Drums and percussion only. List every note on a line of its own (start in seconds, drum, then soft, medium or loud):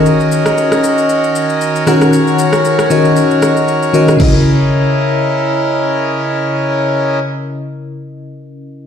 0.06 shaker medium
0.20 shaker soft
0.32 shaker loud
0.46 cross-stick medium
0.46 shaker medium
0.58 shaker medium
0.72 cross-stick medium
0.72 shaker medium
0.84 shaker medium
0.98 shaker medium
1.09 shaker medium
1.24 shaker soft
1.35 shaker medium
1.50 shaker medium
1.61 shaker medium
1.76 shaker medium
1.87 cross-stick medium
1.87 shaker medium
2.01 cross-stick medium
2.01 shaker soft
2.13 shaker medium
2.27 shaker soft
2.39 shaker loud
2.53 cross-stick medium
2.53 shaker medium
2.65 shaker medium
2.79 cross-stick medium
2.79 shaker medium
2.90 shaker medium
3.05 shaker medium
3.16 shaker medium
3.31 shaker soft
3.42 cross-stick medium
3.42 shaker medium
3.57 shaker soft
3.68 shaker medium
3.83 shaker soft
3.94 shaker medium
4.08 cross-stick medium
4.08 shaker soft
4.20 kick loud
4.20 crash medium